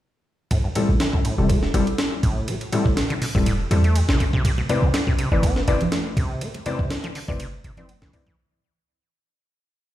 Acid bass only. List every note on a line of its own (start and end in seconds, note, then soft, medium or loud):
0.51 0.58 A2 medium
0.64 0.68 G2 medium
0.76 0.90 A2 medium
0.89 0.95 C4 loud
1.00 1.05 E3 medium
1.13 1.20 A2 medium
1.25 1.36 A2 medium
1.38 1.51 C3 medium
1.49 1.64 A3 medium
1.63 1.69 G3 medium
1.74 1.81 A2 medium
2.23 2.50 A2 medium
2.48 2.55 A3 medium
2.73 2.98 A2 medium
2.97 3.01 G3 loud
3.10 3.14 D3 loud
3.22 3.26 B2 medium
3.35 3.39 A2 loud
3.46 3.53 A2 loud
3.71 3.78 A2 medium
3.84 3.97 A3 medium
3.96 4.00 G3 loud
4.09 4.18 C3 medium
4.20 4.24 B2 medium
4.33 4.43 C3 loud
4.45 4.52 C3 medium
4.58 4.62 B2 medium
4.70 4.84 C3 medium
4.83 4.89 E4 loud
4.94 4.98 G3 medium
5.07 5.13 C3 medium
5.19 5.29 C3 medium
5.32 5.45 E3 medium
5.43 5.58 C4 medium
5.56 5.63 B3 medium
5.68 5.75 C3 medium
6.17 6.43 C3 medium
6.42 6.49 C4 medium
6.66 6.92 C3 medium
6.91 6.95 B3 loud
7.04 7.08 F3 loud
7.15 7.20 D3 medium
7.28 7.32 C3 loud
7.40 7.47 C3 loud
7.64 7.72 C3 medium
7.78 7.90 C4 medium
7.89 7.93 B3 loud
8.02 8.12 E3 medium
8.13 8.18 D3 medium
8.27 8.36 E3 loud